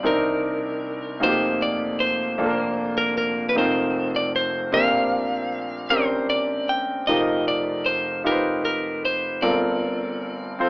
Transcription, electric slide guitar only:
0, 0, Header, 1, 2, 480
1, 0, Start_track
1, 0, Key_signature, -2, "major"
1, 0, Tempo, 781250
1, 25, Time_signature, 6, 3, 24, 8
1, 6571, End_track
2, 0, Start_track
2, 0, Title_t, "Electric slide guitar"
2, 0, Program_c, 0, 29
2, 40, Note_on_c, 0, 70, 74
2, 755, Note_off_c, 0, 70, 0
2, 758, Note_on_c, 0, 72, 66
2, 997, Note_on_c, 0, 74, 62
2, 1000, Note_off_c, 0, 72, 0
2, 1230, Note_on_c, 0, 72, 68
2, 1239, Note_off_c, 0, 74, 0
2, 1826, Note_off_c, 0, 72, 0
2, 1829, Note_on_c, 0, 70, 67
2, 1944, Note_off_c, 0, 70, 0
2, 1952, Note_on_c, 0, 70, 66
2, 2143, Note_off_c, 0, 70, 0
2, 2145, Note_on_c, 0, 71, 61
2, 2188, Note_off_c, 0, 71, 0
2, 2200, Note_on_c, 0, 72, 71
2, 2556, Note_on_c, 0, 74, 67
2, 2565, Note_off_c, 0, 72, 0
2, 2674, Note_off_c, 0, 74, 0
2, 2677, Note_on_c, 0, 72, 69
2, 2896, Note_off_c, 0, 72, 0
2, 2911, Note_on_c, 0, 77, 86
2, 3627, Note_on_c, 0, 72, 72
2, 3651, Note_off_c, 0, 77, 0
2, 3851, Note_off_c, 0, 72, 0
2, 3869, Note_on_c, 0, 74, 76
2, 4112, Note_on_c, 0, 79, 72
2, 4116, Note_off_c, 0, 74, 0
2, 4333, Note_off_c, 0, 79, 0
2, 4345, Note_on_c, 0, 75, 81
2, 4593, Note_off_c, 0, 75, 0
2, 4595, Note_on_c, 0, 74, 67
2, 4828, Note_on_c, 0, 72, 70
2, 4839, Note_off_c, 0, 74, 0
2, 5051, Note_off_c, 0, 72, 0
2, 5079, Note_on_c, 0, 70, 74
2, 5307, Note_off_c, 0, 70, 0
2, 5315, Note_on_c, 0, 70, 67
2, 5558, Note_off_c, 0, 70, 0
2, 5562, Note_on_c, 0, 72, 68
2, 5790, Note_on_c, 0, 74, 70
2, 5801, Note_off_c, 0, 72, 0
2, 6571, Note_off_c, 0, 74, 0
2, 6571, End_track
0, 0, End_of_file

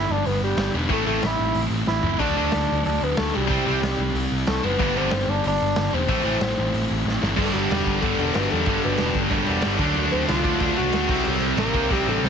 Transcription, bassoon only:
0, 0, Header, 1, 2, 480
1, 0, Start_track
1, 0, Key_signature, 1, "major"
1, 0, Tempo, 323625
1, 1344, Time_signature, 4, 2, 24, 8
1, 18230, End_track
2, 0, Start_track
2, 0, Title_t, "Bassoon"
2, 0, Program_c, 0, 70
2, 0, Note_on_c, 0, 64, 101
2, 170, Note_on_c, 0, 62, 101
2, 193, Note_off_c, 0, 64, 0
2, 396, Note_on_c, 0, 59, 98
2, 418, Note_off_c, 0, 62, 0
2, 629, Note_off_c, 0, 59, 0
2, 646, Note_on_c, 0, 55, 99
2, 1082, Note_off_c, 0, 55, 0
2, 1376, Note_on_c, 0, 57, 94
2, 1572, Note_off_c, 0, 57, 0
2, 1580, Note_on_c, 0, 57, 94
2, 1876, Note_on_c, 0, 64, 106
2, 1899, Note_off_c, 0, 57, 0
2, 2411, Note_off_c, 0, 64, 0
2, 2785, Note_on_c, 0, 64, 105
2, 3254, Note_on_c, 0, 62, 107
2, 3276, Note_off_c, 0, 64, 0
2, 4223, Note_off_c, 0, 62, 0
2, 4234, Note_on_c, 0, 62, 94
2, 4510, Note_on_c, 0, 59, 91
2, 4532, Note_off_c, 0, 62, 0
2, 4699, Note_on_c, 0, 57, 91
2, 4721, Note_off_c, 0, 59, 0
2, 4967, Note_on_c, 0, 55, 97
2, 4989, Note_off_c, 0, 57, 0
2, 6401, Note_off_c, 0, 55, 0
2, 6624, Note_on_c, 0, 57, 95
2, 6885, Note_on_c, 0, 59, 98
2, 6907, Note_off_c, 0, 57, 0
2, 7379, Note_on_c, 0, 60, 98
2, 7402, Note_off_c, 0, 59, 0
2, 7856, Note_on_c, 0, 62, 90
2, 7879, Note_off_c, 0, 60, 0
2, 8084, Note_off_c, 0, 62, 0
2, 8117, Note_on_c, 0, 62, 101
2, 8808, Note_on_c, 0, 60, 91
2, 8830, Note_off_c, 0, 62, 0
2, 10477, Note_off_c, 0, 60, 0
2, 10940, Note_on_c, 0, 57, 91
2, 11157, Note_off_c, 0, 57, 0
2, 11166, Note_on_c, 0, 55, 81
2, 11873, Note_off_c, 0, 55, 0
2, 11883, Note_on_c, 0, 50, 93
2, 12345, Note_off_c, 0, 50, 0
2, 12354, Note_on_c, 0, 47, 102
2, 12601, Note_off_c, 0, 47, 0
2, 12626, Note_on_c, 0, 50, 81
2, 13089, Note_off_c, 0, 50, 0
2, 13116, Note_on_c, 0, 47, 97
2, 13574, Note_off_c, 0, 47, 0
2, 14998, Note_on_c, 0, 60, 96
2, 15241, Note_off_c, 0, 60, 0
2, 15247, Note_on_c, 0, 65, 99
2, 15717, Note_off_c, 0, 65, 0
2, 15760, Note_on_c, 0, 65, 87
2, 15968, Note_off_c, 0, 65, 0
2, 15977, Note_on_c, 0, 66, 109
2, 16907, Note_off_c, 0, 66, 0
2, 17180, Note_on_c, 0, 58, 99
2, 17675, Note_on_c, 0, 55, 91
2, 17697, Note_off_c, 0, 58, 0
2, 17926, Note_on_c, 0, 50, 94
2, 17948, Note_off_c, 0, 55, 0
2, 18158, Note_on_c, 0, 48, 93
2, 18180, Note_off_c, 0, 50, 0
2, 18230, Note_off_c, 0, 48, 0
2, 18230, End_track
0, 0, End_of_file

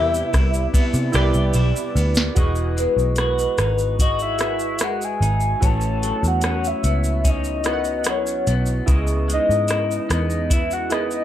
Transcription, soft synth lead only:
0, 0, Header, 1, 2, 480
1, 0, Start_track
1, 0, Key_signature, 4, "major"
1, 0, Tempo, 814111
1, 1395, Time_signature, 4, 2, 24, 8
1, 6629, End_track
2, 0, Start_track
2, 0, Title_t, "Soft synth lead"
2, 0, Program_c, 0, 80
2, 0, Note_on_c, 0, 76, 119
2, 884, Note_off_c, 0, 76, 0
2, 1643, Note_on_c, 0, 71, 102
2, 2335, Note_off_c, 0, 71, 0
2, 2366, Note_on_c, 0, 75, 93
2, 2472, Note_off_c, 0, 75, 0
2, 2490, Note_on_c, 0, 76, 100
2, 2852, Note_on_c, 0, 78, 104
2, 2861, Note_off_c, 0, 76, 0
2, 2974, Note_on_c, 0, 80, 96
2, 2983, Note_off_c, 0, 78, 0
2, 3332, Note_on_c, 0, 81, 120
2, 3341, Note_off_c, 0, 80, 0
2, 3700, Note_on_c, 0, 78, 103
2, 3709, Note_off_c, 0, 81, 0
2, 3807, Note_off_c, 0, 78, 0
2, 3814, Note_on_c, 0, 78, 101
2, 3936, Note_on_c, 0, 76, 115
2, 3944, Note_off_c, 0, 78, 0
2, 4301, Note_on_c, 0, 75, 91
2, 4310, Note_off_c, 0, 76, 0
2, 4776, Note_on_c, 0, 73, 88
2, 4784, Note_off_c, 0, 75, 0
2, 5126, Note_off_c, 0, 73, 0
2, 5501, Note_on_c, 0, 75, 100
2, 5945, Note_off_c, 0, 75, 0
2, 5970, Note_on_c, 0, 75, 101
2, 6187, Note_off_c, 0, 75, 0
2, 6205, Note_on_c, 0, 76, 111
2, 6326, Note_on_c, 0, 78, 108
2, 6335, Note_off_c, 0, 76, 0
2, 6438, Note_on_c, 0, 75, 125
2, 6447, Note_off_c, 0, 78, 0
2, 6629, Note_off_c, 0, 75, 0
2, 6629, End_track
0, 0, End_of_file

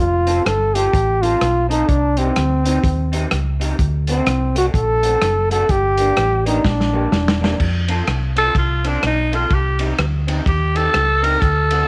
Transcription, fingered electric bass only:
0, 0, Header, 1, 2, 480
1, 0, Start_track
1, 0, Tempo, 476569
1, 1899, Time_signature, 4, 2, 24, 8
1, 11965, End_track
2, 0, Start_track
2, 0, Title_t, "Fingered electric bass"
2, 0, Program_c, 0, 33
2, 0, Note_on_c, 0, 29, 104
2, 390, Note_off_c, 0, 29, 0
2, 463, Note_on_c, 0, 31, 88
2, 869, Note_off_c, 0, 31, 0
2, 944, Note_on_c, 0, 33, 86
2, 1349, Note_off_c, 0, 33, 0
2, 1426, Note_on_c, 0, 35, 97
2, 1831, Note_off_c, 0, 35, 0
2, 1903, Note_on_c, 0, 36, 104
2, 2309, Note_off_c, 0, 36, 0
2, 2392, Note_on_c, 0, 38, 87
2, 2793, Note_off_c, 0, 38, 0
2, 2861, Note_on_c, 0, 39, 89
2, 3267, Note_off_c, 0, 39, 0
2, 3347, Note_on_c, 0, 37, 90
2, 3750, Note_off_c, 0, 37, 0
2, 3821, Note_on_c, 0, 38, 105
2, 4226, Note_off_c, 0, 38, 0
2, 4298, Note_on_c, 0, 36, 102
2, 4705, Note_off_c, 0, 36, 0
2, 4776, Note_on_c, 0, 34, 96
2, 5183, Note_off_c, 0, 34, 0
2, 5258, Note_on_c, 0, 30, 92
2, 5664, Note_off_c, 0, 30, 0
2, 5737, Note_on_c, 0, 31, 108
2, 6144, Note_off_c, 0, 31, 0
2, 6217, Note_on_c, 0, 33, 94
2, 6624, Note_off_c, 0, 33, 0
2, 6695, Note_on_c, 0, 34, 101
2, 7103, Note_off_c, 0, 34, 0
2, 7172, Note_on_c, 0, 28, 101
2, 7581, Note_off_c, 0, 28, 0
2, 7657, Note_on_c, 0, 41, 101
2, 8064, Note_off_c, 0, 41, 0
2, 8134, Note_on_c, 0, 36, 83
2, 8543, Note_off_c, 0, 36, 0
2, 8613, Note_on_c, 0, 36, 85
2, 9023, Note_off_c, 0, 36, 0
2, 9097, Note_on_c, 0, 35, 88
2, 9505, Note_off_c, 0, 35, 0
2, 9577, Note_on_c, 0, 36, 104
2, 9986, Note_off_c, 0, 36, 0
2, 10057, Note_on_c, 0, 38, 96
2, 10466, Note_off_c, 0, 38, 0
2, 10540, Note_on_c, 0, 39, 88
2, 10948, Note_off_c, 0, 39, 0
2, 11028, Note_on_c, 0, 37, 87
2, 11433, Note_off_c, 0, 37, 0
2, 11504, Note_on_c, 0, 38, 102
2, 11911, Note_off_c, 0, 38, 0
2, 11965, End_track
0, 0, End_of_file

